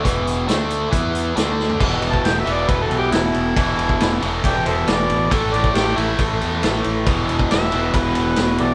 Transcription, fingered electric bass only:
X:1
M:4/4
L:1/8
Q:1/4=137
K:Ador
V:1 name="Fingered electric bass" clef=bass
E,,,2 D,,2 E,,2 D,,2 | E,,, E,,, E,,, E,,, E,,, B,,, E,,, E,,, | E,,, E,,, E,,, E,,, E,,, E,,, E,,, A,,, | A,,, A,,, A,,, A,,, A,,, E,, A,,, A,,, |
E,,, E,,, E,,, E,,, E,,, E,,, z B,,, |]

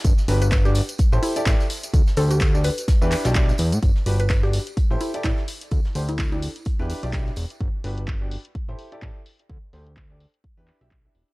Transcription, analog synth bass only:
X:1
M:4/4
L:1/16
Q:"Swing 16ths" 1/4=127
K:G
V:1 name="Analog synth bass" clef=bass
G,,, z G,,,4 z3 A,,, z2 A,,, z3 | D,, z D,,4 z3 E,, z B,,,2 z E,, A,, | G,,, z G,,,4 z3 A,,, z2 A,,, z3 | D,, z D,,4 z3 E,, z B,,,2 z E,,, z |
G,,, z G,,,4 z3 A,,, z2 A,,, z3 | D,, z D,,4 z3 E,, z B,,,2 z E,,, z |]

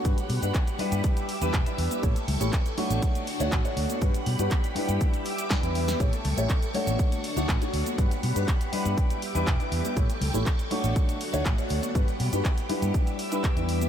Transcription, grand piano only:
X:1
M:4/4
L:1/16
Q:1/4=121
K:Amix
V:1 name="Grand piano"
[G,DFB] z2 [G,DFB] z2 [G,DEB]4 z [G,DEB] z [G,DEB]3 | [A,EGc] z2 [A,EGc] z2 [A,DFc]4 z [A,DFc] z [A,DFc]3 | [G,DFB] z2 [G,DFB] z2 [G,DEB]4 z2 [G,DEB] [G,DEB]3 | [A,EGc] z2 [A,EGc] z2 [A,DFc]4 z [A,DFc] z [A,DFc]3 |
[G,DFB] z2 [G,DFB] z2 [G,DEB]4 z [G,DEB] z [G,DEB]3 | [A,EGc] z2 [A,EGc] z2 [A,DFc]4 z [A,DFc] z [A,DFc]3 | [G,DFB] z2 [G,DFB] z2 [G,DEB]4 z [G,DEB] z [G,DEB]3 |]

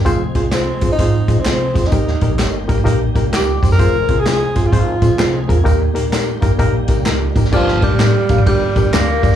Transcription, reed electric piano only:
X:1
M:4/4
L:1/16
Q:"Swing" 1/4=128
K:Ebmix
V:1 name="Reed electric piano"
[CFAc] z [CFAc] z [CFAc] z [CFAc] z [CFAc] z [CFAc] z [CFAc] z [CFAc] z | [B,EGB] z [B,EGB] z [B,EGd] z [B,EGB] z [B,EGB] z [B,EGB] z [B,EGB] z [B,EGc] z | [CFAc] z [CFAc] z [CFAc] z [CFAc] z [CFAc] z [CFAc] z [CFAc] z [CFAB] z | [B,EGB] z [B,EGB] z [B,EGB] z [B,EGB] z [B,EGB] z [B,EGB] z [B,EGB] z [B,EGB] z |
[K:Gm] [B,DGBd] z [B,DGBd] z [B,DGBd] z [B,DGBf] z [B,DGBd] z [B,DGBd] z [B,DGBd] z [B,DGBd] z |]
V:2 name="Reed electric piano" clef=bass
z16 | E,6 z8 z2 | z16 | E,6 z8 z2 |
[K:Gm] G,,6 z8 z2 |]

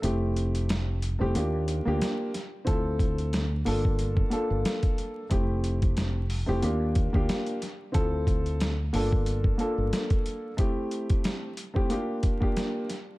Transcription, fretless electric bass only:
X:1
M:4/4
L:1/16
Q:"Swing 16ths" 1/4=91
K:Gdor
V:1 name="Fretless electric bass" clef=bass
F,,,6- F,,, F,,, _E,,3 D,, z4 | D,,6 G,,,4 z G,,, z4 | F,,,6- F,,, F,,, _E,,3 D,, z4 | D,,6 G,,,4 z G,,, z4 |
z16 |]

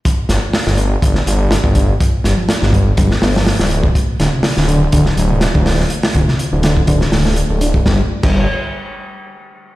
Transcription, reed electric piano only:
X:1
M:4/4
L:1/16
Q:"Swing 16ths" 1/4=123
K:Ddor
V:1 name="Reed electric piano" clef=bass
z16 | z2 G, F, z G, G, z G, z B, F, z G, z2 | z2 D, C, z D, D, z D, z ^F, C, z D, z2 | z2 D, C, z D, D, z D, z D, A, z A, D z |
G, z2 G,2 z8 z3 |]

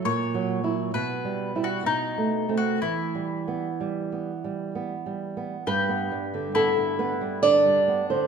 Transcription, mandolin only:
X:1
M:3/4
L:1/16
Q:1/4=66
K:Em
V:1 name="Mandolin"
^c4 B3 F ^D3 F | E8 z4 | [K:G] G4 E4 D4 |]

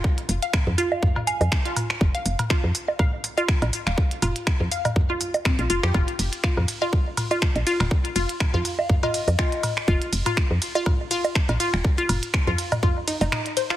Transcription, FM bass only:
X:1
M:4/4
L:1/16
Q:"Swing 16ths" 1/4=122
K:Fm
V:1 name="FM bass" clef=bass
z2 F,,, z2 F,, z4 z F,, z4 | F,,, z F,,, z2 F,, z6 z B,,, z E,,, | z2 F,,, z2 F,, z6 z B,,, F,,, F,, | F,,, z F,,, z2 F,, z6 z B,,, z E,,, |
z2 F,,, z2 F,, z4 z F,, z4 | F,,, z F,,, z2 F,, z6 z B,,, z E,,, | z2 F,,, z2 F,, z4 z F,,, z4 |]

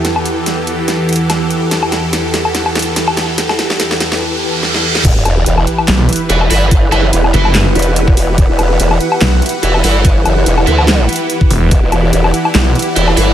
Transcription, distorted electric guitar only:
X:1
M:4/4
L:1/8
Q:"Swing 16ths" 1/4=144
K:Em
V:1 name="Distorted electric guitar"
z8 | z8 | z8 | z6 [EBe] [EBe] |
z [EBe] z [EBe] z4 | z6 [EBe] [EBe] | z3 [EBe] z4 | z6 [EBe] [EBe] |]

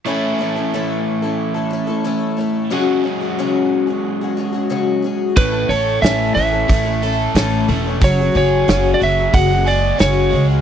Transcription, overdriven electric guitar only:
X:1
M:4/4
L:1/8
Q:1/4=91
K:A
V:1 name="Overdriven electric guitar"
[A,,E,A,CE]8 | [F,G,CF]8 | A,, A C E, A, A C A, | F, G C F, G, G C G, |]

